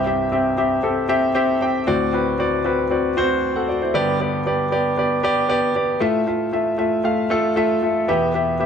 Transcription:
0.00 1.83 C2 medium
0.00 1.83 G2 medium
0.06 0.25 C4 medium
0.06 0.25 G4 medium
0.06 0.25 E5 medium
0.32 0.51 C4 medium
0.32 0.51 G4 medium
0.32 0.51 E5 medium
0.57 0.76 C4 medium
0.57 0.77 G4 medium
0.57 0.77 E5 medium
0.83 1.02 C4 medium
0.83 1.02 G4 medium
0.83 1.02 A4 medium
1.09 1.28 C4 medium
1.09 1.28 G4 medium
1.09 1.28 E5 medium
1.35 1.54 C4 medium
1.35 1.54 G4 medium
1.35 1.54 E5 medium
1.61 1.80 C4 medium
1.61 1.80 G4 medium
1.61 1.80 G5 medium
1.87 3.90 D2 medium
1.87 3.90 A2 medium
1.87 2.06 C4 medium
1.87 2.06 F#4 medium
1.87 2.06 D5 medium
2.13 2.32 C4 medium
2.13 2.32 F#4 medium
2.13 2.32 B4 medium
2.39 2.57 C4 medium
2.39 2.58 F#4 medium
2.39 2.58 D5 medium
2.65 2.83 C4 medium
2.65 2.84 F#4 medium
2.65 2.84 B4 medium
2.90 3.09 C4 medium
2.90 3.10 F#4 medium
2.90 3.10 D5 medium
3.17 3.35 C4 medium
3.17 3.35 F#4 medium
3.17 3.36 C5 medium
3.56 3.68 A4 soft
3.56 3.68 F#5 medium
3.68 3.81 F#4 soft
3.68 3.81 D5 medium
3.82 4.06 E4 soft
3.82 4.06 C5 medium
3.94 5.97 G2 medium
3.94 5.97 D3 medium
3.94 4.13 B3 medium
3.94 4.13 G4 medium
3.94 4.13 D5 medium
4.20 4.39 B3 medium
4.20 4.39 G4 medium
4.20 4.39 D5 medium
4.46 4.65 B3 medium
4.46 4.65 G4 medium
4.46 4.65 D5 medium
4.71 4.90 B3 medium
4.71 4.91 G4 medium
4.71 4.91 D5 medium
4.97 5.16 B3 medium
4.97 5.17 G4 medium
4.97 5.17 D5 medium
5.23 5.42 B3 medium
5.23 5.42 G4 medium
5.23 5.43 D5 medium
5.49 5.68 B3 medium
5.49 5.68 G4 medium
5.49 5.68 D5 medium
5.75 5.94 B3 medium
5.75 5.94 G4 medium
5.75 5.94 D5 medium
6.00 8.04 A2 medium
6.00 6.19 A3 medium
6.00 6.20 F4 medium
6.00 6.20 E5 medium
6.27 6.45 A3 medium
6.27 6.46 F4 medium
6.27 6.46 E5 medium
6.53 6.71 A3 medium
6.53 6.71 F4 medium
6.53 6.72 E5 medium
6.78 6.97 A3 medium
6.78 6.97 F4 medium
6.78 6.97 E5 medium
7.04 7.23 A3 medium
7.04 7.23 F4 medium
7.04 7.23 F5 medium
7.30 7.49 A3 medium
7.30 7.49 F4 medium
7.30 7.49 A4 medium
7.56 7.75 A3 medium
7.56 7.75 F4 medium
7.56 7.75 E5 medium
7.82 8.01 A3 medium
7.82 8.01 F4 medium
7.82 8.01 E5 medium
8.08 8.66 E2 medium
8.08 8.66 B2 medium
8.08 8.27 B3 medium
8.08 8.27 G4 medium
8.08 8.27 E5 medium
8.34 8.53 B3 medium
8.34 8.53 G4 medium
8.34 8.53 E5 medium
8.60 8.66 B3 medium
8.60 8.66 G4 medium
8.60 8.66 E5 medium

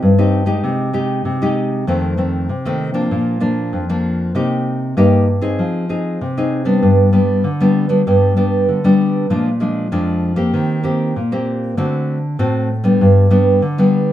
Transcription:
0.00 0.61 G2 medium
0.00 0.13 C4 medium
0.00 0.13 D#4 soft
0.00 0.13 G4 medium
0.18 0.44 C4 medium
0.18 0.44 D#4 medium
0.18 0.45 G4 medium
0.46 0.89 G#3 medium
0.46 0.89 D#4 medium
0.46 0.89 G4 medium
0.64 1.23 C3 medium
0.93 1.36 G#3 medium
0.93 1.36 D#4 medium
0.93 1.36 G4 medium
1.25 1.84 C3 medium
1.42 1.83 G#3 medium
1.42 1.83 D#4 medium
1.42 1.83 G4 medium
1.87 2.47 F2 medium
1.87 2.14 D#3 medium
1.87 2.14 A3 medium
1.87 2.14 C4 medium
2.17 2.47 D#3 soft
2.17 2.48 A3 soft
2.17 2.48 C4 medium
2.49 3.08 C3 medium
2.65 2.91 D#3 medium
2.65 2.92 A3 medium
2.65 2.92 C4 medium
2.94 3.37 F3 medium
2.94 3.37 A#3 medium
2.94 3.37 D4 medium
3.11 3.70 A#2 medium
3.40 3.83 F3 soft
3.40 3.83 A#3 medium
3.40 3.83 D4 medium
3.73 4.32 F2 medium
3.89 4.31 F3 medium
3.89 4.31 A#3 medium
3.89 4.31 D4 medium
4.35 4.94 C3 medium
4.35 4.92 A#3 medium
4.35 4.92 D#4 medium
4.35 4.93 G4 medium
4.97 5.56 G2 medium
4.97 5.26 A#3 medium
4.97 5.26 D#4 medium
4.97 5.27 G4 medium
5.41 5.84 C4 medium
5.41 5.84 D#4 medium
5.41 5.84 G#4 medium
5.59 6.18 F3 medium
5.89 6.19 C4 medium
5.89 6.19 D#4 medium
5.89 6.19 G#4 medium
6.21 6.80 C3 medium
6.37 6.63 C4 medium
6.37 6.63 D#4 medium
6.37 6.63 G#4 medium
6.65 7.11 G3 medium
6.65 7.12 B3 medium
6.65 7.12 D4 medium
6.83 7.42 G2 medium
7.13 7.42 G3 soft
7.13 7.42 B3 soft
7.13 7.43 D4 medium
7.44 8.03 D3 medium
7.60 7.86 G3 medium
7.60 7.87 B3 medium
7.60 7.87 D4 medium
7.89 8.01 G3 medium
7.89 8.01 B3 medium
7.89 8.01 D4 medium
8.07 8.66 G2 medium
8.07 8.33 G3 medium
8.07 8.33 B3 medium
8.07 8.33 D4 medium
8.37 8.79 G3 medium
8.37 8.79 B3 medium
8.37 8.79 D4 medium
8.69 9.27 D3 medium
8.84 9.26 G3 medium
8.84 9.26 B3 medium
8.84 9.26 D4 medium
9.30 9.89 A#2 medium
9.30 9.48 F3 medium
9.30 9.49 G#3 medium
9.30 9.49 D4 medium
9.60 9.87 F3 medium
9.60 9.87 G#3 soft
9.60 9.87 D4 medium
9.92 10.51 F2 medium
9.92 10.33 F3 medium
9.92 10.34 G#3 medium
9.92 10.34 D4 medium
10.36 10.79 A#3 medium
10.36 10.79 C4 medium
10.36 10.79 G4 medium
10.54 11.12 D#3 medium
10.83 11.13 A#3 medium
10.83 11.13 C4 medium
10.83 11.14 G4 medium
11.16 11.75 A#2 medium
11.32 11.73 A#3 medium
11.32 11.73 C4 medium
11.32 11.73 G4 medium
11.77 12.36 D3 medium
11.77 12.17 A3 medium
11.77 12.17 C4 medium
11.77 12.18 F#4 medium
12.39 12.98 A2 medium
12.39 12.68 A3 medium
12.39 12.68 C4 medium
12.39 12.68 F#4 medium
12.84 13.26 G3 medium
12.84 13.26 B3 medium
12.84 13.26 D4 medium
13.01 13.60 G2 medium
13.30 13.60 G3 medium
13.30 13.60 B3 medium
13.30 13.61 D4 medium
13.62 14.13 D3 medium
13.78 14.13 G3 medium
13.78 14.13 B3 medium
13.78 14.13 D4 medium

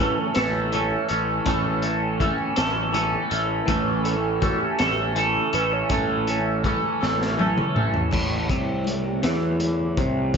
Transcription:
0.00 0.11 A1 loud
0.00 1.44 A2 loud
0.00 0.31 E3 soft
0.00 0.72 E3 medium
0.00 0.32 A3 soft
0.00 0.37 A3 medium
0.00 0.32 C#4 medium
0.00 0.36 C#4 medium
0.00 0.35 A4 medium
0.00 0.19 B4 loud
0.17 0.27 A4 medium
0.17 low conga medium
0.34 0.93 A1 medium
0.34 0.73 A3 medium
0.34 0.74 C#4 medium
0.34 0.75 A4 medium
0.34 0.73 B4 loud
0.34 snare loud
0.34 closed hi-hat loud
0.72 1.46 E3 medium
0.72 1.11 A3 medium
0.72 1.10 C#4 medium
0.72 1.08 A4 medium
0.72 1.08 C#5 loud
0.72 closed hi-hat medium
0.72 high conga loud
0.72 low conga soft
0.91 low conga medium
1.09 1.39 A1 medium
1.09 1.46 A3 medium
1.09 1.47 C#4 medium
1.09 1.48 A4 medium
1.09 closed hi-hat medium
1.45 2.32 A1 medium
1.45 3.66 A2 medium
1.45 2.53 E3 medium
1.45 2.19 E3 medium
1.45 2.53 A3 medium
1.45 1.84 A3 loud
1.45 2.54 C#4 medium
1.45 1.83 C#4 loud
1.45 1.81 A4 loud
1.45 kick loud
1.45 closed hi-hat loud
1.45 high conga loud
1.64 low conga medium
1.82 2.20 A3 medium
1.82 2.21 C#4 medium
1.82 2.22 A4 medium
1.82 closed hi-hat medium
1.82 low conga soft
2.20 2.92 E3 medium
2.20 2.58 A3 medium
2.20 2.57 C#4 medium
2.20 2.56 A4 medium
2.20 kick medium
2.20 closed hi-hat medium
2.20 high conga loud
2.39 low conga medium
2.56 3.15 A1 loud
2.56 2.93 A3 medium
2.56 2.94 C#4 medium
2.56 2.95 A4 medium
2.56 snare loud
2.56 closed hi-hat loud
2.92 3.67 E3 medium
2.92 3.32 A3 medium
2.92 3.31 C#4 medium
2.92 3.29 A4 loud
2.92 closed hi-hat medium
2.92 high conga loud
2.92 low conga soft
3.13 low conga medium
3.30 3.60 A1 loud
3.30 3.68 A3 medium
3.30 3.68 C#4 medium
3.30 3.69 A4 medium
3.30 closed hi-hat medium
3.62 4.16 E3 medium
3.62 4.16 A3 soft
3.62 3.69 A#4 medium
3.62 4.01 B4 medium
3.66 4.54 A1 loud
3.66 5.89 A2 medium
3.66 4.40 E3 loud
3.66 4.06 A3 medium
3.66 4.17 C#4 medium
3.66 4.05 C#4 loud
3.66 4.03 A4 loud
3.66 kick loud
3.66 closed hi-hat loud
3.66 high conga loud
3.86 low conga medium
4.04 4.42 A3 medium
4.04 4.42 C#4 medium
4.04 4.43 A4 medium
4.04 4.44 A4 medium
4.04 closed hi-hat medium
4.41 5.15 E3 medium
4.41 4.81 A3 medium
4.41 4.79 C#4 medium
4.41 4.59 F#4 medium
4.41 4.78 A4 medium
4.41 kick medium
4.41 closed hi-hat medium
4.41 high conga loud
4.61 5.12 G4 medium
4.61 low conga medium
4.78 5.37 A1 medium
4.78 5.16 A3 medium
4.78 5.17 C#4 medium
4.78 5.18 A4 medium
4.78 snare loud
4.78 closed hi-hat medium
5.15 5.90 E3 medium
5.15 5.56 A3 medium
5.15 5.54 C#4 medium
5.15 5.55 A4 loud
5.15 5.53 A4 medium
5.15 closed hi-hat medium
5.35 low conga medium
5.53 5.82 A1 loud
5.53 5.90 A3 medium
5.53 5.90 C#4 medium
5.53 5.91 A4 medium
5.53 5.73 B4 loud
5.53 closed hi-hat medium
5.73 5.92 C#5 loud
5.89 6.76 A1 medium
5.89 6.64 A2 medium
5.89 6.62 E3 loud
5.89 6.40 E3 medium
5.89 6.40 A3 medium
5.89 6.29 A3 loud
5.89 6.40 C#4 medium
5.89 6.28 C#4 loud
5.89 6.26 A4 loud
5.89 6.29 A4 loud
5.89 kick loud
5.89 closed hi-hat medium
5.89 high conga medium
6.10 low conga medium
6.27 6.64 A3 medium
6.27 6.65 C#4 medium
6.27 6.65 A4 medium
6.27 6.63 C#5 medium
6.27 closed hi-hat medium
6.64 7.36 E3 medium
6.64 7.02 A3 medium
6.64 7.01 C#4 medium
6.64 7.00 A4 medium
6.64 kick medium
6.64 closed hi-hat medium
6.64 high conga medium
6.82 low conga medium
7.01 7.59 A1 loud
7.01 7.37 A3 medium
7.01 7.38 C#4 medium
7.01 7.39 A4 medium
7.01 snare medium
7.22 snare medium
7.37 8.10 E3 medium
7.37 7.77 A3 medium
7.37 7.75 C#4 loud
7.37 7.74 A4 loud
7.37 high tom medium
7.37 high conga medium
7.56 mid tom medium
7.56 low conga medium
7.75 8.04 A1 loud
7.75 8.09 E3 medium
7.75 8.09 A3 medium
7.75 8.11 A3 medium
7.75 8.11 C#4 medium
7.75 8.10 C#4 medium
7.75 8.10 A4 medium
7.75 mid tom medium
7.94 floor tom medium
8.11 8.47 A1 medium
8.11 8.48 A2 loud
8.11 10.37 A3 medium
8.11 10.37 E4 medium
8.11 10.37 C#5 medium
8.11 kick loud
8.11 crash loud
8.11 high conga medium
8.29 low conga medium
8.49 9.20 C2 medium
8.49 9.22 C3 medium
8.49 kick loud
8.49 closed hi-hat medium
8.49 low conga soft
8.84 closed hi-hat medium
8.84 high conga loud
9.04 low conga medium
9.23 9.94 E2 medium
9.23 9.96 E3 medium
9.23 snare loud
9.23 closed hi-hat loud
9.60 closed hi-hat medium
9.60 high conga medium
9.60 low conga soft
9.79 low conga medium
9.97 10.37 C2 medium
9.97 10.37 C3 loud
9.97 kick loud
9.97 closed hi-hat medium
10.34 high conga loud

